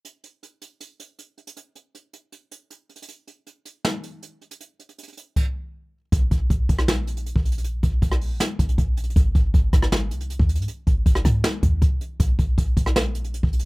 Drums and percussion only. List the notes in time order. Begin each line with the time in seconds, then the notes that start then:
0.05 closed hi-hat
0.24 closed hi-hat
0.43 closed hi-hat
0.62 closed hi-hat
0.81 closed hi-hat
1.00 closed hi-hat
1.19 closed hi-hat
1.38 closed hi-hat
1.47 closed hi-hat
1.57 closed hi-hat
1.75 closed hi-hat
1.95 closed hi-hat
2.13 closed hi-hat
2.32 closed hi-hat
2.51 closed hi-hat
2.70 closed hi-hat
2.89 closed hi-hat
2.96 closed hi-hat
3.02 closed hi-hat
3.08 closed hi-hat
3.27 closed hi-hat
3.47 closed hi-hat
3.65 closed hi-hat
3.85 snare
4.03 closed hi-hat
4.23 closed hi-hat
4.41 closed hi-hat
4.51 closed hi-hat
4.60 closed hi-hat
4.79 closed hi-hat
4.89 closed hi-hat
4.98 closed hi-hat
5.03 closed hi-hat
5.08 closed hi-hat
5.13 closed hi-hat
5.17 closed hi-hat
5.36 kick, crash
6.12 kick, closed hi-hat
6.31 kick, closed hi-hat
6.50 kick, closed hi-hat
6.69 kick, closed hi-hat
6.79 cross-stick
6.88 snare
7.07 closed hi-hat
7.17 closed hi-hat
7.26 closed hi-hat
7.36 kick
7.45 closed hi-hat
7.52 closed hi-hat
7.58 closed hi-hat
7.64 closed hi-hat
7.83 kick, closed hi-hat
8.02 kick, closed hi-hat
8.12 cross-stick
8.21 open hi-hat
8.40 snare, hi-hat pedal
8.59 kick, closed hi-hat
8.69 closed hi-hat
8.78 kick, closed hi-hat
8.97 closed hi-hat, open hi-hat
9.04 closed hi-hat
9.10 closed hi-hat
9.16 kick, closed hi-hat
9.35 kick, closed hi-hat
9.54 kick, closed hi-hat
9.73 kick, cross-stick, closed hi-hat
9.82 cross-stick
9.92 snare
10.11 closed hi-hat
10.20 closed hi-hat
10.30 closed hi-hat
10.39 kick
10.49 closed hi-hat
10.55 closed hi-hat
10.62 closed hi-hat
10.68 closed hi-hat
10.87 kick, closed hi-hat
11.06 kick, closed hi-hat
11.15 cross-stick
11.25 kick, cross-stick, closed hi-hat
11.44 snare
11.63 kick, closed hi-hat
11.82 kick, closed hi-hat
12.01 closed hi-hat
12.20 kick, closed hi-hat
12.39 kick, closed hi-hat
12.58 kick, closed hi-hat
12.77 kick, closed hi-hat
12.86 cross-stick
12.96 snare
13.15 closed hi-hat
13.24 closed hi-hat
13.34 closed hi-hat
13.43 kick
13.53 closed hi-hat
13.59 closed hi-hat